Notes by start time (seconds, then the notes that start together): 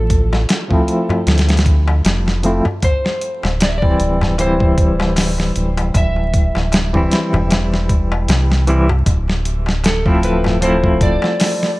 Already playing: A1 F3 A3 C4 E4 A4
0.10 kick, closed hi-hat
0.33 snare, darbuka tek
0.49 snare, closed hi-hat, darbuka tek
0.69 F3 A3 C4 E4, kick, darbuka tek
0.88 closed hi-hat
1.09 darbuka tek, darbuka dum
1.27 D2, snare, closed hi-hat, darbuka tek
1.38 snare, closed hi-hat
1.48 snare, closed hi-hat, darbuka tek
1.57 snare, closed hi-hat
1.66 kick, closed hi-hat
1.88 darbuka tek
2.05 F1, snare, closed hi-hat, darbuka tek
2.27 snare, darbuka tek
2.43 F3 A3 C4 E4, closed hi-hat
2.65 darbuka tek, darbuka dum
2.82 C5, kick, closed hi-hat, darbuka tek
3.05 snare, darbuka tek
3.21 closed hi-hat
3.43 D1, snare, darbuka tek
3.60 D5, snare, closed hi-hat, darbuka tek
3.69 E5
3.78 D5
3.82 E3 G3 C4 E4, kick, darbuka tek
4.00 D1, closed hi-hat
4.21 snare, darbuka tek, darbuka dum
4.38 E3 G3 C4 E4 C5, closed hi-hat, darbuka tek
4.60 kick, darbuka tek
4.78 kick, closed hi-hat
5.00 snare, darbuka tek
5.16 snare, open hi-hat, darbuka tek
5.38 snare, darbuka tek
5.56 D1, closed hi-hat
5.77 closed hi-hat, darbuka tek
5.94 D1 E5, kick, closed hi-hat, darbuka tek
6.16 darbuka tek
6.34 kick, closed hi-hat
6.55 D1, snare, darbuka tek
6.72 snare, closed hi-hat, darbuka tek
6.93 E3 G3 C4 E4, kick, darbuka tek
7.11 snare, closed hi-hat
7.33 E1, darbuka tek, darbuka dum
7.51 snare, closed hi-hat, darbuka tek
7.72 snare, darbuka tek
7.89 kick, closed hi-hat
8.12 darbuka tek
8.28 C2, snare, closed hi-hat, darbuka tek
8.50 snare, darbuka tek
8.67 E3 G3 C4 E4, closed hi-hat
8.89 darbuka tek, darbuka dum
9.06 D1, kick, closed hi-hat, darbuka tek
9.28 snare, darbuka tek
9.45 closed hi-hat
9.66 snare, darbuka tek
9.84 A4, snare, closed hi-hat, darbuka tek
10.06 F3 A3 C4 E4, kick, darbuka tek
10.23 B4, closed hi-hat
10.44 snare, darbuka tek, darbuka dum
10.61 F3 A3 C4 E4 C5, closed hi-hat, darbuka tek
10.84 kick, darbuka tek
11.01 D5, kick, closed hi-hat
11.22 snare, darbuka tek
11.40 snare, open hi-hat, darbuka tek
11.62 snare, darbuka tek